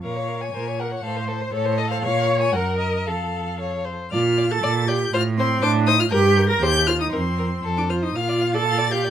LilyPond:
<<
  \new Staff \with { instrumentName = "Violin" } { \time 2/4 \key f \phrygian \tempo 4 = 119 f''8. aes''8. ges''8 | f''8 c''8 des''8 ees''16 f''16 | f''8. aes''16 ges''8 ees''8 | f''4. r8 |
\key bes \major f'''8. a'''8. g'''8 | f'''8 c'''8 d'''8 ees'''16 f'''16 | g'''8. bes'''16 g'''8 f'''16 ees'''16 | c'''4 r16 d'''16 f'''16 ees'''16 |
f'''8. a'''8. g'''8 | }
  \new Staff \with { instrumentName = "Violin" } { \time 2/4 \key f \phrygian bes'16 des''16 bes'16 des''16 bes'16 des''16 bes'16 des''16 | a'16 c''16 a'16 c''16 a'16 c''16 a'16 c''16 | des''4 bes'4 | a'4 des''8 c''8 |
\key bes \major d''8 d''8 d''8 d''8 | c''8 c''8 c''8 c''8 | bes'8 bes'8 c''8 c''8 | bes'8 bes'8 a'8 c''8 |
f''16 d''16 f''16 d''16 f''16 d''16 f''16 d''16 | }
  \new Staff \with { instrumentName = "Viola" } { \time 2/4 \key f \phrygian des''4 c''8 bes'8 | c''4 a'4 | des''4 bes'4 | a'4. r8 |
\key bes \major f'8. a'8. g'8 | f'8 c'8 d'8 ees'16 f'16 | g'8. bes'16 g'8 f'16 ees'16 | c'4 r16 d'16 f'16 ees'16 |
f'8. a'8. g'8 | }
  \new Staff \with { instrumentName = "Cello" } { \clef bass \time 2/4 \key f \phrygian bes,4 bes,4 | a,4 a,4 | bes,4 ges,4 | f,4. r8 |
\key bes \major bes,4 bes,4 | a,4 a,4 | g,4 ees,4 | f,4 f,4 |
bes,2 | }
>>